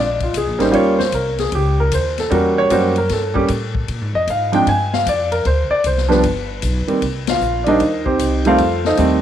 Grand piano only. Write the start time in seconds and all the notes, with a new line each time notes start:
0.00 D5
0.23 F4
0.37 G#4
0.59 G3 A#3 C#4 D#4 C5
0.71 G3 A#3 C#4 F4 C#5
0.99 C5
1.15 A#4
1.40 G#4
1.55 G4
1.80 A#4
1.94 C5
2.20 A4
2.30 G3 A#3 C#4 F#4
2.34 A#4
2.58 C#5
2.71 G3 A#3 C#4 F#4 C5
2.98 A#4
3.13 A4
3.34 G3 A#3 C#4 G4
4.15 D#5
4.30 F5
4.52 F3 G#3 C4 D4 G5
4.69 G#5
4.94 F5
5.09 D5
5.32 A#4
5.46 C5
5.71 D5
5.86 C5
6.08 F3 G3 B3 D4 B4
6.87 D#3 G3 A#3 C4
7.30 F4 F5
7.64 D#3 G3 A#3 D5 D#5
7.68 D4 D#4 A#4 C5
8.06 C4 D#4 G4 C5
8.46 D#3 G3 A3 C4 F4 A4 C5 F5
8.86 D#4 A4 C5 D#5
8.98 D#3 G3 A3 C4